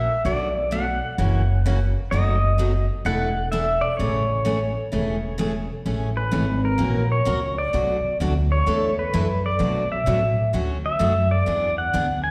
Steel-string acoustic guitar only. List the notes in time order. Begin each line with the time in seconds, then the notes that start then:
0.25 B2 F#3 A3 D4 F#4
0.71 B2 F#3 A3 D4 F#4
1.18 C#3 E3 A#3 C#4 F#4
1.66 C#3 E3 A#3 C#4 F#4
2.12 B2 F#3 A3 D#4 F#4
2.58 B2 F#3 A3 D#4 F#4
3.05 E3 A3 D4 E4 A4
3.52 E3 A3 D4 E4 A4
4.00 C#3 E3 A3 C#4 G#4
4.45 C#3 E3 A3 C#4 G#4
4.92 C#3 E3 A3 C#4 G#4
5.38 C#3 E3 A3 C#4 G#4
5.86 C#3 E3 A3 C#4 G#4
6.31 C#3 E3 A3 C#4 G#4
6.78 E3 A#3 C#4 F#4 A#4
7.25 E3 A#3 C#4 F#4 A#4
7.73 B2 F#3 A3 D4 F#4
8.20 B2 F#3 A3 D4 F#4
8.66 E3 A3 D4 E4 A4
9.13 E3 A3 D4 E4 A4
9.59 B2 F#3 A3 D4 F#4
10.06 B2 F#3 A3 D4 F#4
10.53 D3 F#3 A3 C#4 F#4
10.99 D3 F#3 A3 C#4 F#4
11.46 E3 B3 D4 G#4
11.93 E3 B3 D4 G#4